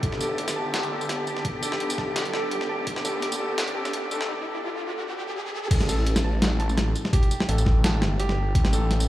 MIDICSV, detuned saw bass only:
0, 0, Header, 1, 2, 480
1, 0, Start_track
1, 0, Tempo, 355030
1, 41, Time_signature, 4, 2, 24, 8
1, 12277, End_track
2, 0, Start_track
2, 0, Title_t, "Detuned saw bass"
2, 0, Program_c, 0, 39
2, 37, Note_on_c, 0, 31, 101
2, 741, Note_off_c, 0, 31, 0
2, 756, Note_on_c, 0, 31, 98
2, 1700, Note_off_c, 0, 31, 0
2, 2436, Note_on_c, 0, 31, 93
2, 3140, Note_off_c, 0, 31, 0
2, 3158, Note_on_c, 0, 29, 99
2, 3622, Note_off_c, 0, 29, 0
2, 3639, Note_on_c, 0, 29, 100
2, 3862, Note_off_c, 0, 29, 0
2, 3878, Note_on_c, 0, 31, 102
2, 4581, Note_off_c, 0, 31, 0
2, 4598, Note_on_c, 0, 31, 101
2, 5541, Note_off_c, 0, 31, 0
2, 5560, Note_on_c, 0, 31, 98
2, 5800, Note_off_c, 0, 31, 0
2, 7717, Note_on_c, 0, 33, 102
2, 8421, Note_off_c, 0, 33, 0
2, 8439, Note_on_c, 0, 33, 102
2, 9382, Note_off_c, 0, 33, 0
2, 10120, Note_on_c, 0, 33, 92
2, 10822, Note_off_c, 0, 33, 0
2, 10837, Note_on_c, 0, 31, 96
2, 11301, Note_off_c, 0, 31, 0
2, 11319, Note_on_c, 0, 31, 99
2, 11542, Note_off_c, 0, 31, 0
2, 11559, Note_on_c, 0, 33, 103
2, 12262, Note_off_c, 0, 33, 0
2, 12277, End_track
0, 0, End_of_file